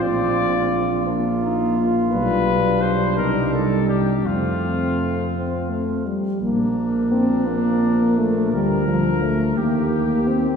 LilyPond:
<<
  \new Staff \with { instrumentName = "Trumpet" } { \time 6/8 \key bes \major \tempo 4. = 57 d''4. r4. | b'4 c''8 bes'8 a'8 g'8 | f'2~ f'8 r8 | d'2. |
bes'4. g'4. | }
  \new Staff \with { instrumentName = "Flugelhorn" } { \time 6/8 \key bes \major f'2.~ | f'4. ees'4. | c'2~ c'8 r8 | bes'2.~ |
bes'4. g'4. | }
  \new Staff \with { instrumentName = "Trombone" } { \time 6/8 \key bes \major f'4. d'8 ees'8 f'8 | d'2. | c'2~ c'16 r8. | f2.~ |
f4. ees4. | }
  \new Staff \with { instrumentName = "French horn" } { \time 6/8 \key bes \major c'4. bes4. | g2. | a4. c'8 a8 g8 | bes4 c'8 bes4 a8 |
g8 f8 a8 bes4 c'8 | }
  \new Staff \with { instrumentName = "Tuba" } { \clef bass \time 6/8 \key bes \major bes,,2. | b,,4. c,4. | f,2~ f,8 r8 | bes,,2. |
d,4. ees,4. | }
>>